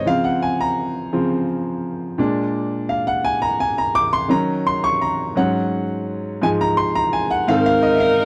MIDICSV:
0, 0, Header, 1, 3, 480
1, 0, Start_track
1, 0, Key_signature, -5, "major"
1, 0, Tempo, 706714
1, 43, Time_signature, 6, 3, 24, 8
1, 5603, End_track
2, 0, Start_track
2, 0, Title_t, "Grand piano"
2, 0, Program_c, 0, 0
2, 0, Control_c, 0, 64, 127
2, 37, Note_on_c, 0, 49, 50
2, 40, Note_on_c, 0, 53, 42
2, 46, Note_on_c, 0, 60, 55
2, 50, Note_on_c, 0, 77, 91
2, 51, Control_c, 0, 64, 0
2, 164, Note_on_c, 0, 78, 74
2, 170, Note_off_c, 0, 77, 0
2, 175, Control_c, 0, 64, 127
2, 198, Note_off_c, 0, 78, 0
2, 288, Note_on_c, 0, 80, 72
2, 398, Note_off_c, 0, 80, 0
2, 411, Note_on_c, 0, 82, 89
2, 631, Note_off_c, 0, 82, 0
2, 733, Note_off_c, 0, 49, 0
2, 734, Note_off_c, 0, 53, 0
2, 738, Note_off_c, 0, 60, 0
2, 763, Note_on_c, 0, 49, 41
2, 767, Note_on_c, 0, 53, 44
2, 768, Note_on_c, 0, 60, 48
2, 979, Note_off_c, 0, 49, 0
2, 981, Note_off_c, 0, 53, 0
2, 982, Note_off_c, 0, 60, 0
2, 1481, Note_on_c, 0, 46, 53
2, 1484, Note_on_c, 0, 56, 43
2, 1490, Note_on_c, 0, 62, 58
2, 1492, Control_c, 0, 64, 0
2, 1625, Control_c, 0, 64, 127
2, 1964, Note_on_c, 0, 77, 66
2, 2085, Note_on_c, 0, 78, 80
2, 2087, Note_off_c, 0, 77, 0
2, 2119, Note_off_c, 0, 78, 0
2, 2176, Note_off_c, 0, 46, 0
2, 2177, Note_off_c, 0, 56, 0
2, 2180, Note_off_c, 0, 62, 0
2, 2204, Note_on_c, 0, 80, 89
2, 2321, Note_on_c, 0, 82, 92
2, 2327, Note_off_c, 0, 80, 0
2, 2446, Note_off_c, 0, 82, 0
2, 2447, Note_on_c, 0, 80, 80
2, 2481, Note_off_c, 0, 80, 0
2, 2568, Note_on_c, 0, 82, 78
2, 2678, Note_off_c, 0, 82, 0
2, 2683, Note_on_c, 0, 86, 111
2, 2804, Note_on_c, 0, 84, 93
2, 2807, Note_off_c, 0, 86, 0
2, 2909, Note_on_c, 0, 51, 51
2, 2914, Note_on_c, 0, 54, 47
2, 2916, Note_on_c, 0, 61, 61
2, 2924, Note_on_c, 0, 82, 91
2, 2928, Note_off_c, 0, 84, 0
2, 2932, Control_c, 0, 64, 0
2, 3047, Control_c, 0, 64, 127
2, 3147, Note_off_c, 0, 82, 0
2, 3169, Note_on_c, 0, 84, 82
2, 3235, Note_off_c, 0, 51, 0
2, 3238, Note_off_c, 0, 54, 0
2, 3239, Note_off_c, 0, 61, 0
2, 3286, Note_on_c, 0, 85, 101
2, 3290, Note_off_c, 0, 84, 0
2, 3407, Note_on_c, 0, 82, 78
2, 3408, Note_off_c, 0, 85, 0
2, 3628, Note_off_c, 0, 82, 0
2, 3638, Note_on_c, 0, 44, 54
2, 3641, Note_on_c, 0, 54, 52
2, 3646, Note_on_c, 0, 61, 63
2, 3648, Note_on_c, 0, 78, 75
2, 3654, Control_c, 0, 64, 0
2, 3766, Control_c, 0, 64, 127
2, 3869, Note_off_c, 0, 78, 0
2, 3960, Note_off_c, 0, 44, 0
2, 3961, Note_off_c, 0, 54, 0
2, 3964, Note_off_c, 0, 61, 0
2, 4358, Note_on_c, 0, 44, 57
2, 4361, Note_on_c, 0, 53, 49
2, 4364, Note_on_c, 0, 56, 57
2, 4368, Note_on_c, 0, 80, 90
2, 4371, Control_c, 0, 64, 0
2, 4402, Note_off_c, 0, 80, 0
2, 4471, Control_c, 0, 64, 127
2, 4489, Note_on_c, 0, 82, 99
2, 4598, Note_off_c, 0, 82, 0
2, 4599, Note_on_c, 0, 84, 80
2, 4723, Note_on_c, 0, 82, 100
2, 4725, Note_off_c, 0, 84, 0
2, 4842, Note_on_c, 0, 80, 86
2, 4846, Note_off_c, 0, 82, 0
2, 4954, Note_off_c, 0, 80, 0
2, 4961, Note_on_c, 0, 78, 85
2, 5052, Note_off_c, 0, 44, 0
2, 5054, Note_off_c, 0, 53, 0
2, 5056, Note_off_c, 0, 56, 0
2, 5077, Note_on_c, 0, 44, 58
2, 5082, Note_on_c, 0, 51, 53
2, 5083, Note_on_c, 0, 77, 93
2, 5085, Note_off_c, 0, 78, 0
2, 5085, Note_on_c, 0, 60, 66
2, 5092, Control_c, 0, 64, 0
2, 5193, Note_off_c, 0, 77, 0
2, 5203, Note_on_c, 0, 77, 95
2, 5219, Control_c, 0, 64, 127
2, 5316, Note_on_c, 0, 75, 78
2, 5326, Note_off_c, 0, 77, 0
2, 5390, Note_on_c, 0, 76, 53
2, 5394, Note_off_c, 0, 75, 0
2, 5434, Note_on_c, 0, 77, 80
2, 5439, Note_off_c, 0, 76, 0
2, 5603, Note_off_c, 0, 44, 0
2, 5603, Note_off_c, 0, 51, 0
2, 5603, Note_off_c, 0, 60, 0
2, 5603, Note_off_c, 0, 77, 0
2, 5603, End_track
3, 0, Start_track
3, 0, Title_t, "Saxophone section"
3, 0, Program_c, 1, 65
3, 5094, Note_on_c, 1, 70, 101
3, 5096, Note_on_c, 1, 63, 78
3, 5603, Note_off_c, 1, 63, 0
3, 5603, Note_off_c, 1, 70, 0
3, 5603, End_track
0, 0, End_of_file